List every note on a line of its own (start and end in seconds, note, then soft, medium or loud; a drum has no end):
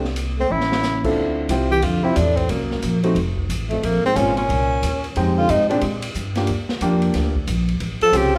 0.00 0.47 C2 medium
0.05 snare soft
0.16 hi-hat pedal medium
0.16 ride medium
0.38 0.52 A3 medium
0.38 0.53 C4 medium
0.50 1.13 A1 medium
0.50 1.04 C#4 medium
0.50 1.05 E4 medium
0.61 snare soft
0.72 snare medium
0.83 snare medium
0.83 hi-hat pedal soft
1.04 1.47 D3 medium
1.04 1.47 C4 soft
1.04 1.47 E4 medium
1.04 1.47 F4 soft
1.04 1.48 A4 medium
1.04 kick medium
1.04 crash medium
1.16 1.48 D2 medium
1.49 1.82 C2 medium
1.49 1.69 C4 medium
1.49 1.69 E4 medium
1.49 1.69 F4 medium
1.49 1.69 G4 medium
1.49 hi-hat pedal medium
1.49 ride medium
1.70 1.84 E3 medium
1.70 1.85 G4 medium
1.82 2.15 F2 medium
1.82 2.05 D3 medium
1.82 2.05 F4 medium
1.82 ride medium
2.04 2.18 C3 medium
2.04 2.15 C4 medium
2.04 2.18 E4 medium
2.04 2.15 E4 medium
2.04 2.15 F4 medium
2.04 2.15 G4 medium
2.16 2.48 E2 medium
2.16 2.38 A2 medium
2.16 2.38 D4 medium
2.16 hi-hat pedal medium
2.16 ride medium
2.36 2.51 A2 medium
2.36 2.52 C4 medium
2.36 kick soft
2.36 ride soft
2.49 2.82 C2 medium
2.49 3.04 F#2 medium
2.49 3.04 A#3 medium
2.49 ride medium
2.71 snare soft
2.82 3.14 A#1 medium
2.82 hi-hat pedal soft
2.82 ride medium
3.03 3.15 A3 medium
3.03 3.15 C4 medium
3.03 3.15 D#4 medium
3.03 3.15 F#4 medium
3.03 ride soft
3.15 3.48 F1 medium
3.15 ride medium
3.38 kick soft
3.49 3.81 A1 medium
3.49 hi-hat pedal medium
3.49 ride medium
3.70 3.83 F2 medium
3.70 3.86 A3 medium
3.70 ride soft
3.83 4.02 A#1 medium
3.83 4.03 F2 medium
3.83 4.05 A#3 medium
3.83 ride medium
4.04 4.18 G#2 medium
4.04 4.18 C4 medium
4.15 4.48 G#1 medium
4.15 4.37 A#2 medium
4.15 4.35 G#3 medium
4.15 4.34 C4 medium
4.15 4.35 C#4 medium
4.15 4.37 C#4 medium
4.15 4.35 F4 medium
4.15 hi-hat pedal soft
4.15 ride medium
4.37 5.12 A#2 medium
4.37 5.12 C#4 medium
4.37 ride soft
4.49 4.81 C2 medium
4.49 ride medium
4.83 5.14 D#2 medium
4.83 hi-hat pedal medium
4.83 ride medium
5.04 ride soft
5.16 5.48 F2 medium
5.16 5.66 G#3 medium
5.16 5.66 C4 medium
5.16 5.66 D#4 medium
5.16 5.66 G4 medium
5.16 ride medium
5.37 5.52 D3 medium
5.37 5.52 F4 medium
5.49 5.81 G#2 medium
5.49 5.69 C3 medium
5.49 5.69 D#4 medium
5.49 hi-hat pedal medium
5.49 ride medium
5.69 5.81 A#2 medium
5.69 5.80 G#3 medium
5.69 5.80 C4 medium
5.69 5.81 D4 medium
5.69 5.81 G4 medium
5.69 ride soft
5.81 6.14 A#2 medium
5.81 ride medium
6.02 ride medium
6.14 6.47 G2 medium
6.14 hi-hat pedal medium
6.35 6.47 A#3 medium
6.35 6.47 D4 soft
6.35 6.47 F4 soft
6.35 6.47 G4 medium
6.35 snare soft
6.35 ride soft
6.47 6.80 D#2 medium
6.47 ride medium
6.69 snare medium
6.81 7.13 F2 medium
6.81 7.32 A#3 medium
6.81 7.32 D4 medium
6.81 7.32 F4 medium
6.81 7.32 G4 medium
6.81 hi-hat pedal medium
6.81 ride medium
7.02 ride soft
7.14 7.47 D2 medium
7.14 snare soft
7.14 ride medium
7.36 kick medium
7.47 7.80 A#1 medium
7.47 hi-hat pedal medium
7.47 ride medium
7.69 ride soft
7.80 8.00 A1 medium
7.80 ride medium
8.01 8.18 F3 medium
8.01 8.18 A4 medium
8.01 muted upright bass stroke soft
8.01 ride soft
8.12 8.38 C2 medium
8.12 8.38 C4 medium
8.12 8.38 C#4 medium
8.12 8.38 F4 medium
8.12 8.38 G4 medium
8.12 hi-hat pedal medium
8.12 ride medium
8.16 8.36 C#3 medium
8.16 8.35 G4 medium